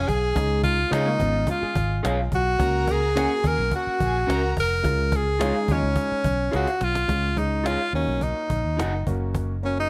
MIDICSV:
0, 0, Header, 1, 10, 480
1, 0, Start_track
1, 0, Tempo, 561798
1, 302, Time_signature, 4, 2, 24, 8
1, 8454, End_track
2, 0, Start_track
2, 0, Title_t, "Violin section"
2, 0, Program_c, 0, 48
2, 0, Note_on_c, 0, 68, 99
2, 0, Note_on_c, 0, 80, 114
2, 165, Note_off_c, 0, 80, 0
2, 167, Note_off_c, 0, 68, 0
2, 2209, Note_on_c, 0, 70, 101
2, 2209, Note_on_c, 0, 82, 109
2, 2663, Note_off_c, 0, 70, 0
2, 2663, Note_off_c, 0, 82, 0
2, 2683, Note_on_c, 0, 68, 99
2, 2685, Note_on_c, 0, 80, 106
2, 2880, Note_off_c, 0, 68, 0
2, 2881, Note_off_c, 0, 80, 0
2, 2938, Note_on_c, 0, 68, 79
2, 2940, Note_on_c, 0, 80, 80
2, 3128, Note_off_c, 0, 68, 0
2, 3130, Note_off_c, 0, 80, 0
2, 3176, Note_on_c, 0, 66, 83
2, 3177, Note_on_c, 0, 78, 89
2, 3367, Note_off_c, 0, 66, 0
2, 3368, Note_off_c, 0, 78, 0
2, 3419, Note_on_c, 0, 68, 94
2, 3419, Note_on_c, 0, 80, 96
2, 3609, Note_off_c, 0, 68, 0
2, 3609, Note_off_c, 0, 80, 0
2, 3653, Note_on_c, 0, 70, 99
2, 3653, Note_on_c, 0, 82, 107
2, 3992, Note_off_c, 0, 70, 0
2, 3992, Note_off_c, 0, 82, 0
2, 8454, End_track
3, 0, Start_track
3, 0, Title_t, "Clean electric guitar"
3, 0, Program_c, 1, 27
3, 783, Note_on_c, 1, 65, 89
3, 787, Note_on_c, 1, 68, 87
3, 792, Note_on_c, 1, 73, 88
3, 798, Note_on_c, 1, 77, 91
3, 897, Note_off_c, 1, 65, 0
3, 899, Note_off_c, 1, 68, 0
3, 901, Note_off_c, 1, 73, 0
3, 904, Note_off_c, 1, 77, 0
3, 1734, Note_on_c, 1, 65, 97
3, 1738, Note_on_c, 1, 68, 94
3, 1744, Note_on_c, 1, 73, 106
3, 1750, Note_on_c, 1, 77, 103
3, 1851, Note_off_c, 1, 65, 0
3, 1853, Note_off_c, 1, 68, 0
3, 1856, Note_off_c, 1, 73, 0
3, 1859, Note_off_c, 1, 77, 0
3, 2694, Note_on_c, 1, 61, 75
3, 2702, Note_on_c, 1, 66, 87
3, 2706, Note_on_c, 1, 70, 75
3, 2710, Note_on_c, 1, 78, 93
3, 2810, Note_off_c, 1, 61, 0
3, 2814, Note_off_c, 1, 66, 0
3, 2816, Note_off_c, 1, 70, 0
3, 2818, Note_off_c, 1, 78, 0
3, 3646, Note_on_c, 1, 61, 94
3, 3651, Note_on_c, 1, 66, 90
3, 3656, Note_on_c, 1, 70, 97
3, 3660, Note_on_c, 1, 78, 97
3, 3766, Note_off_c, 1, 61, 0
3, 3768, Note_off_c, 1, 66, 0
3, 3771, Note_off_c, 1, 70, 0
3, 3772, Note_off_c, 1, 78, 0
3, 4608, Note_on_c, 1, 65, 79
3, 4615, Note_on_c, 1, 68, 79
3, 4621, Note_on_c, 1, 73, 80
3, 4625, Note_on_c, 1, 77, 83
3, 4726, Note_off_c, 1, 65, 0
3, 4730, Note_off_c, 1, 68, 0
3, 4733, Note_off_c, 1, 73, 0
3, 4735, Note_off_c, 1, 77, 0
3, 5566, Note_on_c, 1, 65, 88
3, 5575, Note_on_c, 1, 68, 107
3, 5578, Note_on_c, 1, 73, 97
3, 5585, Note_on_c, 1, 77, 86
3, 5686, Note_off_c, 1, 65, 0
3, 5691, Note_off_c, 1, 68, 0
3, 5692, Note_off_c, 1, 73, 0
3, 5696, Note_off_c, 1, 77, 0
3, 6525, Note_on_c, 1, 65, 70
3, 6534, Note_on_c, 1, 68, 77
3, 6540, Note_on_c, 1, 73, 78
3, 6543, Note_on_c, 1, 77, 83
3, 6647, Note_off_c, 1, 65, 0
3, 6652, Note_off_c, 1, 68, 0
3, 6655, Note_off_c, 1, 73, 0
3, 6656, Note_off_c, 1, 77, 0
3, 7495, Note_on_c, 1, 63, 83
3, 7503, Note_on_c, 1, 66, 81
3, 7508, Note_on_c, 1, 70, 83
3, 7515, Note_on_c, 1, 78, 86
3, 7614, Note_off_c, 1, 63, 0
3, 7618, Note_off_c, 1, 66, 0
3, 7621, Note_off_c, 1, 70, 0
3, 7624, Note_off_c, 1, 78, 0
3, 8454, End_track
4, 0, Start_track
4, 0, Title_t, "Horn section"
4, 0, Program_c, 2, 61
4, 4615, Note_on_c, 2, 73, 93
4, 4617, Note_on_c, 2, 65, 86
4, 4621, Note_on_c, 2, 56, 87
4, 4717, Note_off_c, 2, 73, 0
4, 4718, Note_off_c, 2, 65, 0
4, 4721, Note_off_c, 2, 56, 0
4, 4859, Note_on_c, 2, 56, 90
4, 4860, Note_on_c, 2, 65, 90
4, 4861, Note_on_c, 2, 73, 100
4, 5199, Note_off_c, 2, 56, 0
4, 5200, Note_off_c, 2, 65, 0
4, 5200, Note_off_c, 2, 73, 0
4, 8454, End_track
5, 0, Start_track
5, 0, Title_t, "Tenor saxophone"
5, 0, Program_c, 3, 66
5, 71, Note_on_c, 3, 68, 98
5, 534, Note_off_c, 3, 68, 0
5, 540, Note_on_c, 3, 65, 93
5, 789, Note_on_c, 3, 63, 91
5, 802, Note_off_c, 3, 65, 0
5, 1264, Note_off_c, 3, 63, 0
5, 1285, Note_on_c, 3, 65, 80
5, 1728, Note_off_c, 3, 65, 0
5, 2006, Note_on_c, 3, 66, 99
5, 2487, Note_on_c, 3, 68, 101
5, 2500, Note_off_c, 3, 66, 0
5, 2966, Note_on_c, 3, 70, 109
5, 2978, Note_off_c, 3, 68, 0
5, 3190, Note_off_c, 3, 70, 0
5, 3206, Note_on_c, 3, 66, 96
5, 3876, Note_off_c, 3, 66, 0
5, 3930, Note_on_c, 3, 70, 101
5, 4412, Note_on_c, 3, 68, 89
5, 4424, Note_off_c, 3, 70, 0
5, 4890, Note_on_c, 3, 61, 86
5, 4903, Note_off_c, 3, 68, 0
5, 5594, Note_off_c, 3, 61, 0
5, 5604, Note_on_c, 3, 66, 91
5, 5841, Note_on_c, 3, 65, 106
5, 5853, Note_off_c, 3, 66, 0
5, 6309, Note_on_c, 3, 63, 81
5, 6321, Note_off_c, 3, 65, 0
5, 6552, Note_on_c, 3, 65, 90
5, 6565, Note_off_c, 3, 63, 0
5, 6786, Note_off_c, 3, 65, 0
5, 6791, Note_on_c, 3, 61, 82
5, 7031, Note_on_c, 3, 63, 76
5, 7043, Note_off_c, 3, 61, 0
5, 7749, Note_off_c, 3, 63, 0
5, 8244, Note_on_c, 3, 61, 75
5, 8347, Note_off_c, 3, 61, 0
5, 8369, Note_on_c, 3, 63, 85
5, 8454, Note_off_c, 3, 63, 0
5, 8454, End_track
6, 0, Start_track
6, 0, Title_t, "Hollow-body jazz guitar"
6, 0, Program_c, 4, 26
6, 905, Note_on_c, 4, 61, 81
6, 913, Note_on_c, 4, 58, 67
6, 1017, Note_off_c, 4, 61, 0
6, 1021, Note_off_c, 4, 58, 0
6, 1026, Note_on_c, 4, 63, 83
6, 1032, Note_on_c, 4, 59, 75
6, 1250, Note_off_c, 4, 63, 0
6, 1254, Note_off_c, 4, 59, 0
6, 1276, Note_on_c, 4, 61, 60
6, 1277, Note_on_c, 4, 65, 85
6, 1381, Note_off_c, 4, 65, 0
6, 1382, Note_off_c, 4, 61, 0
6, 1391, Note_on_c, 4, 68, 72
6, 1397, Note_on_c, 4, 65, 56
6, 2069, Note_off_c, 4, 68, 0
6, 2072, Note_off_c, 4, 65, 0
6, 8454, End_track
7, 0, Start_track
7, 0, Title_t, "Upright piano"
7, 0, Program_c, 5, 0
7, 301, Note_on_c, 5, 56, 81
7, 302, Note_on_c, 5, 61, 70
7, 305, Note_on_c, 5, 63, 83
7, 631, Note_off_c, 5, 56, 0
7, 631, Note_off_c, 5, 61, 0
7, 633, Note_off_c, 5, 63, 0
7, 771, Note_on_c, 5, 61, 69
7, 773, Note_on_c, 5, 56, 70
7, 779, Note_on_c, 5, 65, 77
7, 1434, Note_off_c, 5, 61, 0
7, 1435, Note_off_c, 5, 56, 0
7, 1438, Note_off_c, 5, 65, 0
7, 2209, Note_on_c, 5, 58, 80
7, 2211, Note_on_c, 5, 61, 66
7, 2212, Note_on_c, 5, 66, 87
7, 2542, Note_off_c, 5, 58, 0
7, 2543, Note_off_c, 5, 61, 0
7, 2544, Note_off_c, 5, 66, 0
7, 2697, Note_on_c, 5, 58, 67
7, 2699, Note_on_c, 5, 61, 71
7, 2702, Note_on_c, 5, 66, 85
7, 3355, Note_off_c, 5, 58, 0
7, 3357, Note_off_c, 5, 61, 0
7, 3358, Note_off_c, 5, 66, 0
7, 4126, Note_on_c, 5, 56, 73
7, 4134, Note_on_c, 5, 65, 80
7, 4136, Note_on_c, 5, 61, 65
7, 4460, Note_off_c, 5, 56, 0
7, 4464, Note_off_c, 5, 65, 0
7, 4465, Note_off_c, 5, 61, 0
7, 4615, Note_on_c, 5, 56, 81
7, 4618, Note_on_c, 5, 61, 61
7, 4620, Note_on_c, 5, 63, 84
7, 5276, Note_off_c, 5, 56, 0
7, 5277, Note_off_c, 5, 61, 0
7, 5278, Note_off_c, 5, 63, 0
7, 6048, Note_on_c, 5, 56, 65
7, 6050, Note_on_c, 5, 61, 66
7, 6053, Note_on_c, 5, 65, 70
7, 6218, Note_off_c, 5, 56, 0
7, 6219, Note_off_c, 5, 61, 0
7, 6220, Note_off_c, 5, 65, 0
7, 6291, Note_on_c, 5, 56, 76
7, 6295, Note_on_c, 5, 63, 76
7, 6296, Note_on_c, 5, 61, 63
7, 6625, Note_off_c, 5, 56, 0
7, 6628, Note_off_c, 5, 61, 0
7, 6628, Note_off_c, 5, 63, 0
7, 6780, Note_on_c, 5, 63, 59
7, 6781, Note_on_c, 5, 58, 71
7, 6785, Note_on_c, 5, 66, 75
7, 7551, Note_off_c, 5, 58, 0
7, 7551, Note_off_c, 5, 63, 0
7, 7554, Note_off_c, 5, 66, 0
7, 7746, Note_on_c, 5, 58, 78
7, 7748, Note_on_c, 5, 61, 76
7, 7752, Note_on_c, 5, 66, 87
7, 8131, Note_off_c, 5, 58, 0
7, 8131, Note_off_c, 5, 61, 0
7, 8134, Note_off_c, 5, 66, 0
7, 8222, Note_on_c, 5, 58, 72
7, 8225, Note_on_c, 5, 61, 69
7, 8231, Note_on_c, 5, 66, 74
7, 8454, Note_off_c, 5, 58, 0
7, 8454, Note_off_c, 5, 61, 0
7, 8454, Note_off_c, 5, 66, 0
7, 8454, End_track
8, 0, Start_track
8, 0, Title_t, "Fingered electric bass"
8, 0, Program_c, 6, 33
8, 74, Note_on_c, 6, 35, 84
8, 274, Note_off_c, 6, 35, 0
8, 309, Note_on_c, 6, 37, 113
8, 714, Note_off_c, 6, 37, 0
8, 781, Note_on_c, 6, 49, 86
8, 985, Note_off_c, 6, 49, 0
8, 1030, Note_on_c, 6, 32, 84
8, 1230, Note_off_c, 6, 32, 0
8, 1505, Note_on_c, 6, 32, 84
8, 1706, Note_off_c, 6, 32, 0
8, 1745, Note_on_c, 6, 35, 102
8, 1946, Note_off_c, 6, 35, 0
8, 1984, Note_on_c, 6, 35, 92
8, 2186, Note_off_c, 6, 35, 0
8, 2220, Note_on_c, 6, 37, 115
8, 2787, Note_off_c, 6, 37, 0
8, 2940, Note_on_c, 6, 39, 88
8, 3041, Note_off_c, 6, 39, 0
8, 3064, Note_on_c, 6, 35, 88
8, 3163, Note_off_c, 6, 35, 0
8, 3422, Note_on_c, 6, 34, 86
8, 3623, Note_off_c, 6, 34, 0
8, 3663, Note_on_c, 6, 37, 90
8, 3864, Note_off_c, 6, 37, 0
8, 3906, Note_on_c, 6, 29, 75
8, 4106, Note_off_c, 6, 29, 0
8, 4142, Note_on_c, 6, 37, 110
8, 4709, Note_off_c, 6, 37, 0
8, 4857, Note_on_c, 6, 39, 77
8, 4959, Note_off_c, 6, 39, 0
8, 4980, Note_on_c, 6, 37, 87
8, 5080, Note_off_c, 6, 37, 0
8, 5338, Note_on_c, 6, 35, 80
8, 5542, Note_off_c, 6, 35, 0
8, 5587, Note_on_c, 6, 37, 89
8, 5685, Note_off_c, 6, 37, 0
8, 5822, Note_on_c, 6, 35, 75
8, 6025, Note_off_c, 6, 35, 0
8, 6059, Note_on_c, 6, 37, 84
8, 6630, Note_off_c, 6, 37, 0
8, 6777, Note_on_c, 6, 39, 83
8, 6880, Note_off_c, 6, 39, 0
8, 6902, Note_on_c, 6, 35, 81
8, 7107, Note_off_c, 6, 35, 0
8, 7261, Note_on_c, 6, 34, 76
8, 7364, Note_off_c, 6, 34, 0
8, 7390, Note_on_c, 6, 39, 83
8, 7509, Note_on_c, 6, 30, 84
8, 7522, Note_off_c, 6, 39, 0
8, 7712, Note_off_c, 6, 30, 0
8, 7747, Note_on_c, 6, 30, 90
8, 8454, Note_off_c, 6, 30, 0
8, 8454, End_track
9, 0, Start_track
9, 0, Title_t, "Cajon"
9, 72, Note_on_c, 9, 36, 85
9, 157, Note_off_c, 9, 36, 0
9, 306, Note_on_c, 9, 36, 116
9, 392, Note_off_c, 9, 36, 0
9, 433, Note_on_c, 9, 38, 31
9, 519, Note_off_c, 9, 38, 0
9, 543, Note_on_c, 9, 36, 85
9, 628, Note_off_c, 9, 36, 0
9, 794, Note_on_c, 9, 38, 117
9, 879, Note_off_c, 9, 38, 0
9, 1022, Note_on_c, 9, 36, 86
9, 1108, Note_off_c, 9, 36, 0
9, 1255, Note_on_c, 9, 36, 98
9, 1341, Note_off_c, 9, 36, 0
9, 1499, Note_on_c, 9, 36, 98
9, 1584, Note_off_c, 9, 36, 0
9, 1630, Note_on_c, 9, 38, 33
9, 1715, Note_off_c, 9, 38, 0
9, 1749, Note_on_c, 9, 38, 104
9, 1835, Note_off_c, 9, 38, 0
9, 1981, Note_on_c, 9, 36, 83
9, 2066, Note_off_c, 9, 36, 0
9, 2218, Note_on_c, 9, 36, 114
9, 2303, Note_off_c, 9, 36, 0
9, 2457, Note_on_c, 9, 36, 96
9, 2542, Note_off_c, 9, 36, 0
9, 2707, Note_on_c, 9, 38, 108
9, 2793, Note_off_c, 9, 38, 0
9, 2939, Note_on_c, 9, 36, 90
9, 3024, Note_off_c, 9, 36, 0
9, 3174, Note_on_c, 9, 36, 81
9, 3260, Note_off_c, 9, 36, 0
9, 3421, Note_on_c, 9, 36, 95
9, 3506, Note_off_c, 9, 36, 0
9, 3552, Note_on_c, 9, 38, 35
9, 3638, Note_off_c, 9, 38, 0
9, 3672, Note_on_c, 9, 38, 98
9, 3757, Note_off_c, 9, 38, 0
9, 3903, Note_on_c, 9, 36, 88
9, 3989, Note_off_c, 9, 36, 0
9, 4139, Note_on_c, 9, 36, 107
9, 4224, Note_off_c, 9, 36, 0
9, 4375, Note_on_c, 9, 36, 95
9, 4460, Note_off_c, 9, 36, 0
9, 4498, Note_on_c, 9, 38, 35
9, 4583, Note_off_c, 9, 38, 0
9, 4620, Note_on_c, 9, 38, 126
9, 4706, Note_off_c, 9, 38, 0
9, 4855, Note_on_c, 9, 36, 90
9, 4941, Note_off_c, 9, 36, 0
9, 5090, Note_on_c, 9, 36, 96
9, 5175, Note_off_c, 9, 36, 0
9, 5335, Note_on_c, 9, 36, 99
9, 5420, Note_off_c, 9, 36, 0
9, 5463, Note_on_c, 9, 38, 34
9, 5548, Note_off_c, 9, 38, 0
9, 5573, Note_on_c, 9, 38, 46
9, 5582, Note_off_c, 9, 38, 0
9, 5582, Note_on_c, 9, 38, 61
9, 5667, Note_off_c, 9, 38, 0
9, 5702, Note_on_c, 9, 38, 60
9, 5787, Note_off_c, 9, 38, 0
9, 5817, Note_on_c, 9, 38, 83
9, 5903, Note_off_c, 9, 38, 0
9, 5941, Note_on_c, 9, 38, 98
9, 6026, Note_off_c, 9, 38, 0
9, 6057, Note_on_c, 9, 36, 105
9, 6142, Note_off_c, 9, 36, 0
9, 6297, Note_on_c, 9, 36, 85
9, 6382, Note_off_c, 9, 36, 0
9, 6430, Note_on_c, 9, 38, 33
9, 6516, Note_off_c, 9, 38, 0
9, 6543, Note_on_c, 9, 38, 109
9, 6629, Note_off_c, 9, 38, 0
9, 6784, Note_on_c, 9, 38, 36
9, 6869, Note_off_c, 9, 38, 0
9, 7017, Note_on_c, 9, 36, 79
9, 7102, Note_off_c, 9, 36, 0
9, 7262, Note_on_c, 9, 36, 91
9, 7347, Note_off_c, 9, 36, 0
9, 7383, Note_on_c, 9, 38, 27
9, 7468, Note_off_c, 9, 38, 0
9, 7514, Note_on_c, 9, 38, 100
9, 7600, Note_off_c, 9, 38, 0
9, 7747, Note_on_c, 9, 36, 85
9, 7833, Note_off_c, 9, 36, 0
9, 7985, Note_on_c, 9, 36, 99
9, 8070, Note_off_c, 9, 36, 0
9, 8232, Note_on_c, 9, 38, 38
9, 8318, Note_off_c, 9, 38, 0
9, 8357, Note_on_c, 9, 38, 35
9, 8442, Note_off_c, 9, 38, 0
9, 8454, End_track
10, 0, Start_track
10, 0, Title_t, "Muted fingered electric bass strokes"
10, 1388, Note_on_c, 9, 29, 44
10, 1473, Note_off_c, 9, 29, 0
10, 3306, Note_on_c, 9, 29, 50
10, 3392, Note_off_c, 9, 29, 0
10, 5226, Note_on_c, 9, 29, 47
10, 5312, Note_off_c, 9, 29, 0
10, 8454, End_track
0, 0, End_of_file